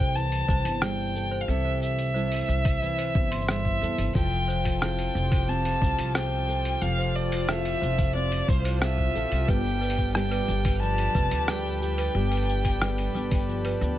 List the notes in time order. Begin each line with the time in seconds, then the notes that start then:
Already playing: C2 C3 G3 E4 A4 G5
0.00 C5
0.15 E3 A5, shaker
0.32 open hi-hat, shaker
0.48 C2 E4 C5, kick, shaker
0.65 G1, open hi-hat, shaker
0.81 G3 C5 G5, cross-stick, shaker
0.99 shaker
1.15 A4, shaker
1.31 C5
1.41 F5
1.48 C2 C3 A4 E5, shaker
1.65 C5
1.82 E5, shaker
1.99 open hi-hat, shaker
2.14 G3 E4 A4 C5, shaker
2.32 open hi-hat, shaker
2.34 open hi-hat
2.36 open hi-hat
2.39 open hi-hat
2.41 open hi-hat
2.44 open hi-hat
2.48 C2 C5, shaker
2.65 kick, open hi-hat, shaker
2.82 E3, shaker
2.98 C5, open hi-hat, shaker
3.15 G1 E4, kick
3.31 C6, open hi-hat
3.41 shaker
3.48 G3 C5 E5, cross-stick, shaker
3.65 kick, shaker
3.81 E2 A4 C5, shaker
3.98 G1, open hi-hat, shaker
4.15 F1 F3 F4 A4 G5, kick, shaker
4.32 shaker
4.48 C5, shaker
4.59 A4
4.65 kick, open hi-hat, shaker
4.81 C4 E4 A4 C5 G5, cross-stick, shaker
4.99 open hi-hat, shaker
5.13 F1 C4, shaker
5.22 G4
5.32 C5, kick, open hi-hat, shaker
5.48 C4 A5, shaker
5.65 C5, open hi-hat, shaker
5.82 C2, kick, shaker
5.98 C2, open hi-hat, shaker
6.15 C4 C5 G5, cross-stick, shaker
6.33 shaker
6.48 A4 C5, shaker
6.65 open hi-hat, shaker
6.82 F1 F3 A4 F5, shaker
6.99 C5, shaker
7.15 D5
7.32 C5, open hi-hat, shaker
7.48 C4 E4 A4 E5, cross-stick, shaker
7.65 open hi-hat, shaker
7.81 F1 C5, shaker
7.98 kick, open hi-hat, shaker
8.14 C4 C5 D5, shaker
8.32 open hi-hat, shaker
8.48 C2 E4 C5, kick, shaker
8.65 C5, open hi-hat, shaker
8.82 C4 E5, cross-stick, shaker
8.98 C5, kick, shaker
9.15 A1 A4, shaker
9.32 C2, open hi-hat, shaker
9.47 G1 G2 G3 G4 B4 G5, kick, shaker
9.66 shaker
9.81 B4, shaker
9.90 open hi-hat
9.98 kick, shaker
10.09 D4
10.15 G3 B3 G4 G5, cross-stick, shaker
10.31 B4, open hi-hat
10.48 G1, shaker
10.65 B4, kick, open hi-hat, shaker
10.80 F3 B4 A5, shaker
10.98 open hi-hat, shaker
11.15 F1 B3 B4, kick, shaker
11.31 D2, open hi-hat, shaker
11.48 G3 B4 G5, cross-stick, shaker
11.66 shaker
11.81 G4 G5, shaker
11.98 B4, open hi-hat, shaker
12.15 G1 G2 G4
12.31 B4, open hi-hat, shaker
12.37 open hi-hat
12.43 open hi-hat
12.49 shaker
12.65 kick, open hi-hat
12.81 G3 B3 G4 B4, cross-stick, shaker
12.98 open hi-hat, shaker
13.15 G1 B4, shaker
13.31 kick, open hi-hat, shaker
13.48 F3, shaker
13.65 B4, open hi-hat, shaker
13.81 D2 B3, shaker